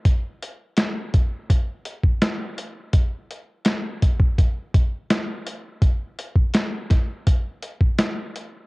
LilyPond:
\new DrumStaff \with { instrumentName = "Drums" } \drummode { \time 4/4 \tempo 4 = 83 <hh bd>8 hh8 <hh sn>8 <hh bd>8 <hh bd>8 hh16 bd16 <hh sn>8 hh8 | <hh bd>8 hh8 <hh sn>8 <hh bd>16 bd16 <hh bd>8 <hh bd>8 <hh sn>8 hh8 | <hh bd>8 hh16 bd16 <hh sn>8 <hh bd sn>8 <hh bd>8 hh16 bd16 <hh sn>8 hh8 | }